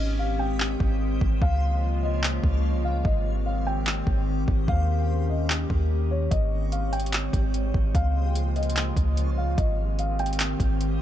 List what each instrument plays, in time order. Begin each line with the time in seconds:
Already playing: 808-style bass G#1, ambient pad D#3 G#3 C4 G4, synth texture G#3 G4 C5, felt piano D#5
0.19 felt piano F5
0.39 felt piano G5
0.60 clap
0.80 808-style bass G#1, kick
1.21 808-style bass G#1, kick
1.42 808-style bass C#2, ambient pad C#3 F3 A#3 F4, synth texture A#3 F4 C#5, felt piano F5, kick
2.03 felt piano D#5
2.24 clap
2.44 808-style bass C#2, kick
2.74 808-style bass C2
2.84 felt piano F5
2.90 808-style bass C#2
3.05 808-style bass G#1, ambient pad D#3 C4 G4, synth texture G#3 G4 C5, felt piano D#5, kick
3.46 felt piano F5
3.67 felt piano G5
3.87 clap
4.07 808-style bass G#1, kick
4.48 808-style bass G#1, kick
4.68 808-style bass D#2, synth texture G3 D#4 C#5, ambient pad A#3 C#4, felt piano F5, kick
5.29 felt piano D#5
5.50 clap
5.70 808-style bass D#2, kick
6.11 felt piano C#5
6.31 808-style bass G#1, ambient pad G#3 C4, synth texture G#3 G4 C5, felt piano D#5, kick, closed hi-hat
6.72 felt piano F5, closed hi-hat
6.93 felt piano G5, closed hi-hat
7.00 closed hi-hat
7.06 closed hi-hat
7.13 clap, closed hi-hat
7.33 808-style bass G#1, kick, closed hi-hat
7.54 closed hi-hat
7.74 808-style bass G#1, kick
7.95 808-style bass C#2, ambient pad C#3 F3 A#3 F4, synth texture A#3 F4 C#5, felt piano F5, kick, closed hi-hat
8.35 closed hi-hat
8.56 felt piano D#5, closed hi-hat
8.63 closed hi-hat
8.70 closed hi-hat
8.76 clap, closed hi-hat
8.97 808-style bass C#2, kick, closed hi-hat
9.17 closed hi-hat
9.27 808-style bass C2
9.37 felt piano F5
9.43 808-style bass C#2
9.58 808-style bass G#1, ambient pad D#3 C4 G4, synth texture G#3 G4 C5, felt piano D#5, kick, closed hi-hat
9.99 felt piano F5, closed hi-hat
10.19 felt piano G5, closed hi-hat
10.26 closed hi-hat
10.33 closed hi-hat
10.40 clap, closed hi-hat
10.60 808-style bass G#1, kick, closed hi-hat
10.81 closed hi-hat